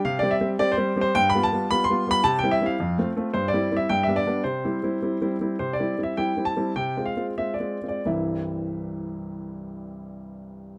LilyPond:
\new Staff \with { instrumentName = "Grand piano" } { \time 2/4 \key c \major \tempo 4 = 106 << { f''16 d''16 e''8 d''16 c''8 c''16 | g''16 b''16 a''8 b''16 c'''8 b''16 | a''16 g''16 e''16 f''8. r8 | c''16 d''8 e''16 g''16 e''16 d''8 |
c''4. r8 | c''16 d''8 e''16 g''8 a''8 | g''8 f''8 e''16 d''8 d''16 | <c, g, e g c' e' e''>2~ |
<c, g, e g c' e' e''>2 | } \\ { \tuplet 3/2 { c8 <g c' g'>8 <g c' g'>8 <g c' g'>8 <g c' g'>8 <g c' g'>8 } | \tuplet 3/2 { g,8 <g b f'>8 <g b f'>8 <g b f'>8 <g b f'>8 <g b f'>8 } | \tuplet 3/2 { c8 <g c' e'>8 <g c' e'>8 f,8 <a c' f'>8 <a c' f'>8 } | \tuplet 3/2 { g,8 <g c' e'>8 <g c' e'>8 g,8 <g b d'>8 <g b d'>8 } |
\tuplet 3/2 { c8 <g c' e'>8 <g c' e'>8 <g c' e'>8 <g c' e'>8 <g c' e'>8 } | \tuplet 3/2 { c8 <g c' e'>8 <g c' e'>8 <g c' e'>8 <g c' e'>8 <g c' e'>8 } | \tuplet 3/2 { c8 <aes c' f'>8 <aes c' f'>8 <aes c' f'>8 <aes c' f'>8 <aes c' f'>8 } | r2 |
r2 | } >> }